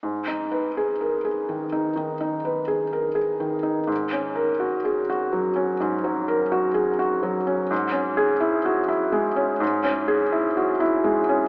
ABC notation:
X:1
M:4/4
L:1/16
Q:1/4=63
K:G#m
V:1 name="Felt piano"
G,, D B G A G D, D D, D B G A G D, D | G,, C A F G F F, C G,, F, A F G F F, C | G,, C G E F E G, C G,, C G E F E G, C |]